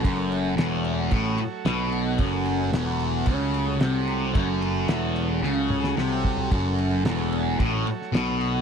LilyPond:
<<
  \new Staff \with { instrumentName = "Transistor combo organ" } { \time 4/4 \key fis \minor \tempo 4 = 111 <fis a fis' a' cis''>1~ | <fis a fis' a' cis''>1~ | <fis a fis' a' cis''>1~ | <fis a fis' a' cis''>1 | }
  \new Staff \with { instrumentName = "Distorted electric guitar" } { \clef bass \time 4/4 \key fis \minor fis,4 e,4 a,8 r8 b,4 | fis,4 e,4 cis4 bis,4 | fis,4 e,4 cis4 bis,4 | fis,4 e,4 a,8 r8 b,4 | }
  \new Staff \with { instrumentName = "Picked electric bass" } { \clef bass \time 4/4 \key fis \minor fis,,4 e,,4 a,,8 r8 b,,4 | fis,,4 e,,4 cis,4 bis,,4 | fis,,4 e,,4 cis,4 bis,,4 | fis,,4 e,,4 a,,8 r8 b,,4 | }
  \new DrumStaff \with { instrumentName = "Drums" } \drummode { \time 4/4 <bd cymr>8 cymr8 <cymr sn>8 cymr8 <bd cymr>8 cymr8 <cymr sn>8 cymr8 | <bd cymr>8 cymr8 <cymr sn>8 cymr8 <bd cymr>8 cymr8 <cymr sn>8 cymr8 | <bd cymr>8 cymr8 <cymr sn>8 cymr8 sn8 toml16 sn16 sn8 bd16 tomfh16 | <bd cymr>8 cymr8 <cymr sn>8 cymr8 <bd cymr>8 cymr16 sn16 <cymr sn>8 cymr8 | }
>>